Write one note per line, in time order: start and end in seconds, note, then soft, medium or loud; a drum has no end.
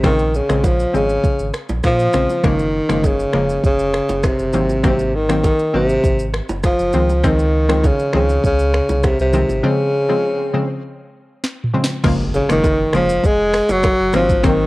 0.04 0.40 A#1 loud
0.04 0.45 C#3 medium
0.04 0.37 D#3 loud
0.04 0.46 F3 medium
0.04 0.46 G#3 medium
0.04 0.46 C4 loud
0.04 finger snap medium
0.04 kick loud
0.04 cross-stick medium
0.04 low conga medium
0.04 shaker medium
0.19 shaker medium
0.34 0.67 C#3 medium
0.34 shaker medium
0.49 0.85 A#1 medium
0.49 0.67 C#3 medium
0.49 0.67 F3 medium
0.49 0.67 G#3 medium
0.49 0.67 C4 medium
0.49 finger snap medium
0.49 cross-stick loud
0.49 shaker soft
0.64 0.94 F3 loud
0.64 kick loud
0.64 high bongo medium
0.64 shaker medium
0.79 shaker soft
0.93 1.18 G#1 medium
0.93 1.12 C#3 medium
0.93 1.54 C#3 loud
0.93 1.12 F3 medium
0.93 1.12 G#3 medium
0.93 1.12 C4 medium
0.93 shaker soft
1.09 shaker medium
1.24 kick loud
1.24 low conga medium
1.24 shaker medium
1.39 1.51 G#1 medium
1.39 shaker medium
1.54 finger snap medium
1.54 cross-stick medium
1.54 shaker medium
1.69 1.81 A#1 loud
1.69 low bongo medium
1.69 shaker medium
1.83 2.08 A#2 loud
1.83 2.47 F3 loud
1.83 finger snap medium
1.83 kick medium
1.83 cross-stick medium
1.83 high bongo medium
1.83 shaker medium
1.99 shaker medium
2.13 2.26 A#1 medium
2.13 2.32 C#3 medium
2.13 2.32 F3 medium
2.13 2.32 G#3 medium
2.13 2.32 C4 medium
2.13 finger snap medium
2.13 cross-stick medium
2.13 low bongo medium
2.13 low conga medium
2.13 shaker medium
2.29 low bongo medium
2.29 shaker soft
2.44 2.81 F#1 loud
2.44 2.85 C#3 medium
2.44 3.07 D#3 loud
2.44 2.86 F3 medium
2.44 2.86 G#3 medium
2.44 2.86 A#3 loud
2.44 finger snap medium
2.44 kick loud
2.44 cross-stick medium
2.44 low conga medium
2.44 shaker medium
2.59 shaker medium
2.89 3.25 F#1 loud
2.89 3.07 C#3 medium
2.89 3.07 F3 medium
2.89 3.07 G#3 medium
2.89 3.07 A#3 medium
2.89 finger snap medium
2.89 cross-stick loud
2.89 shaker soft
3.04 3.65 C#3 medium
3.04 kick loud
3.04 high bongo medium
3.04 shaker medium
3.19 shaker soft
3.33 3.58 F1 medium
3.33 3.52 C#3 medium
3.33 3.52 F3 medium
3.33 3.52 G#3 medium
3.33 3.52 A#3 medium
3.33 finger snap medium
3.33 cross-stick medium
3.49 shaker medium
3.64 4.01 F1 medium
3.64 4.27 C#3 loud
3.64 kick loud
3.64 low conga medium
3.64 shaker medium
3.79 shaker medium
3.94 finger snap medium
3.94 cross-stick medium
4.09 4.33 F#1 loud
4.09 low bongo medium
4.09 shaker medium
4.23 4.85 C3 medium
4.23 finger snap medium
4.23 kick medium
4.23 cross-stick loud
4.23 high bongo medium
4.23 shaker medium
4.39 4.51 F#1 medium
4.39 shaker medium
4.53 5.50 G#1 loud
4.53 4.72 D#3 medium
4.53 4.72 F#3 medium
4.53 4.72 A#3 medium
4.53 4.72 C4 medium
4.53 low bongo medium
4.53 low conga medium
4.53 shaker medium
4.69 low bongo soft
4.69 shaker medium
4.83 5.17 C3 medium
4.83 5.25 D#3 medium
4.83 5.26 F#3 medium
4.83 5.26 A#3 medium
4.83 5.26 C4 loud
4.83 finger snap medium
4.83 kick loud
4.83 cross-stick loud
4.83 low conga medium
4.83 shaker medium
4.99 shaker medium
5.15 5.44 D#3 loud
5.29 5.47 D#3 medium
5.29 5.47 F#3 medium
5.29 5.47 A#3 medium
5.29 5.47 C4 medium
5.29 finger snap medium
5.29 cross-stick loud
5.29 shaker medium
5.44 5.72 D#3 medium
5.44 kick medium
5.44 high bongo medium
5.44 shaker medium
5.59 shaker soft
5.74 5.98 G#1 medium
5.74 6.34 C3 loud
5.74 5.92 D#3 medium
5.74 5.92 F#3 medium
5.74 5.92 A#3 medium
5.74 5.92 C4 medium
5.89 shaker medium
6.04 6.41 G#1 medium
6.04 kick loud
6.04 low conga medium
6.04 shaker medium
6.19 shaker medium
6.34 finger snap medium
6.34 cross-stick loud
6.49 6.73 F#1 medium
6.49 low bongo medium
6.49 shaker medium
6.63 7.27 F3 loud
6.63 finger snap medium
6.63 kick medium
6.63 cross-stick medium
6.63 high bongo medium
6.63 shaker medium
6.79 6.91 F#1 medium
6.79 shaker medium
6.93 7.90 C#2 loud
6.93 7.12 D#3 medium
6.93 7.12 F3 medium
6.93 7.12 G#3 medium
6.93 7.12 C4 medium
6.93 low bongo medium
6.93 low conga medium
6.93 shaker medium
7.09 low bongo medium
7.09 shaker medium
7.23 7.65 D#3 medium
7.23 7.87 D#3 loud
7.23 7.66 F3 medium
7.23 7.66 G#3 medium
7.23 7.66 C4 loud
7.23 finger snap medium
7.23 kick loud
7.23 cross-stick medium
7.23 swell medium
7.23 low conga medium
7.23 shaker medium
7.39 shaker medium
7.69 7.87 D#3 medium
7.69 7.87 F3 medium
7.69 7.87 G#3 medium
7.69 7.87 C4 medium
7.69 finger snap medium
7.69 cross-stick loud
7.69 shaker medium
7.84 8.15 C#3 medium
7.84 kick loud
7.84 high bongo medium
7.84 shaker medium
7.99 shaker soft
8.13 8.38 C#2 loud
8.13 8.42 C#3 medium
8.13 8.32 D#3 medium
8.13 8.32 F3 medium
8.13 8.32 G#3 medium
8.13 8.32 C4 medium
8.13 finger snap medium
8.13 cross-stick medium
8.29 shaker medium
8.44 8.80 C#2 loud
8.44 9.07 C#3 medium
8.44 kick loud
8.44 low conga medium
8.44 shaker medium
8.59 shaker medium
8.74 finger snap medium
8.74 cross-stick medium
8.89 9.13 C2 medium
8.89 low bongo medium
8.89 shaker medium
9.03 9.20 C3 medium
9.03 finger snap medium
9.03 kick medium
9.03 cross-stick loud
9.03 high bongo medium
9.03 shaker medium
9.19 9.43 C2 medium
9.19 9.67 C3 medium
9.19 shaker medium
9.33 9.52 D#3 medium
9.33 9.52 F3 medium
9.33 9.52 G#3 medium
9.33 9.52 C4 medium
9.33 low bongo medium
9.33 low conga medium
9.33 shaker medium
9.49 9.61 G#1 medium
9.49 low bongo medium
9.49 shaker medium
9.63 10.05 C#3 medium
9.63 10.84 C#3 medium
9.63 10.05 F3 medium
9.63 10.06 G#3 medium
9.63 10.06 C4 loud
10.09 10.27 C#3 medium
10.09 10.27 F3 medium
10.09 10.27 G#3 medium
10.09 10.27 C4 medium
10.54 10.72 C#3 medium
10.54 10.72 F3 medium
10.54 10.72 G#3 medium
10.54 10.72 C4 medium
11.44 snare medium
11.64 mid tom medium
11.73 11.92 C#3 medium
11.73 11.92 F3 medium
11.73 11.92 G#3 medium
11.73 11.92 C4 medium
11.84 snare loud
12.03 12.40 F#1 loud
12.03 12.45 C#3 loud
12.03 12.46 F3 medium
12.03 12.46 G#3 medium
12.03 12.46 A#3 loud
12.03 finger snap medium
12.03 kick loud
12.03 cross-stick loud
12.03 crash loud
12.03 impact medium
12.03 low conga medium
12.03 shaker medium
12.34 12.49 C#3 medium
12.34 high bongo medium
12.34 shaker medium
12.49 12.85 F#1 loud
12.49 12.67 C#3 medium
12.49 12.92 D#3 loud
12.49 12.67 F3 medium
12.49 12.67 G#3 medium
12.49 12.67 A#3 medium
12.49 finger snap medium
12.49 cross-stick loud
12.49 shaker medium
12.64 kick loud
12.64 high bongo medium
12.64 shaker medium
12.93 13.18 F1 medium
12.93 13.12 C#3 medium
12.93 13.12 F3 medium
12.93 13.27 F3 loud
12.93 13.12 G#3 medium
12.93 13.12 A#3 medium
12.93 finger snap medium
12.93 cross-stick medium
12.93 shaker medium
13.09 shaker medium
13.24 13.60 F1 medium
13.24 13.72 G#3 loud
13.24 kick loud
13.24 low conga medium
13.24 shaker medium
13.53 finger snap medium
13.53 cross-stick loud
13.53 open hi-hat medium
13.53 shaker medium
13.69 13.93 F#1 loud
13.69 14.14 F#3 loud
13.69 low bongo medium
13.69 shaker medium
13.83 finger snap medium
13.83 kick loud
13.83 cross-stick loud
13.83 high bongo medium
13.83 shaker medium
13.99 14.11 F#1 medium
14.13 14.67 G#1 loud
14.13 14.32 D#3 medium
14.13 14.47 F3 loud
14.13 14.32 F#3 medium
14.13 14.32 A#3 medium
14.13 14.32 C4 medium
14.13 finger snap medium
14.13 cross-stick loud
14.13 low bongo medium
14.13 low conga medium
14.13 shaker medium
14.29 kick medium
14.29 shaker medium
14.43 14.67 D#3 loud
14.43 14.67 F#3 medium
14.43 14.67 A#3 medium
14.43 14.67 C4 loud
14.43 finger snap medium
14.43 kick loud
14.43 cross-stick loud
14.43 low conga medium
14.43 shaker medium